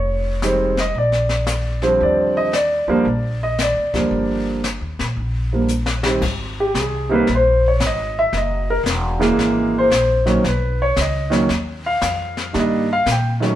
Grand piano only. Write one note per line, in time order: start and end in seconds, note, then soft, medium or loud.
0.00 0.75 C#5 medium
0.43 0.74 D#3 medium
0.43 0.74 G3 medium
0.43 0.75 G#3 medium
0.43 0.75 C4 medium
0.80 0.96 D#5 medium
0.98 1.80 D5 medium
1.83 2.49 D3 medium
1.83 2.50 F3 medium
1.83 2.50 G3 medium
1.83 2.50 C4 medium
2.03 2.36 D5 medium
2.37 2.53 D#5 medium
2.54 3.37 D5 medium
2.88 3.04 D3 medium
2.88 3.04 F3 medium
2.88 3.04 G3 medium
2.88 3.05 A#3 medium
3.43 3.59 D#5 medium
3.62 4.44 D5 medium
3.94 4.61 D3 medium
3.94 4.61 F3 medium
3.94 4.61 G3 medium
3.94 4.62 A#3 medium
5.53 5.68 D3 soft
5.53 5.68 F3 soft
5.53 5.68 G3 soft
5.53 5.69 A#3 medium
6.04 6.20 C3 medium
6.04 6.21 D#3 medium
6.04 6.21 G3 medium
6.04 6.21 C4 medium
6.60 6.76 G4 medium
6.79 7.11 G#4 medium
7.09 7.25 C3 medium
7.09 7.26 D#3 medium
7.09 7.26 G3 medium
7.09 7.27 A#3 medium
7.14 7.29 B4 medium
7.35 7.66 C5 medium
7.68 7.82 C#5 medium
7.86 8.18 D#5 medium
8.19 8.34 E5 medium
8.37 8.69 D#5 medium
8.70 8.80 A#4 medium
9.19 9.87 C#3 medium
9.19 9.87 E3 medium
9.19 9.87 G#3 medium
9.19 9.87 A#3 medium
9.78 10.42 C5 medium
10.25 10.42 D#3 medium
10.25 10.42 F#3 medium
10.25 10.42 A#3 medium
10.25 10.43 C#4 medium
10.48 10.80 B4 medium
10.82 10.97 C#5 medium
11.01 11.33 D#5 medium
11.30 11.47 D#3 medium
11.30 11.47 F#3 medium
11.30 11.47 A#3 medium
11.30 11.47 C#4 medium
11.86 12.52 F5 medium
12.53 12.86 D#3 medium
12.53 12.86 G3 medium
12.53 12.86 A#3 medium
12.53 12.86 D4 medium
12.59 12.91 D#5 medium
12.93 13.08 F5 loud
13.12 13.32 G5 medium
13.40 13.55 D#3 medium
13.40 13.55 F#3 medium
13.40 13.55 A3 medium
13.40 13.55 C#4 medium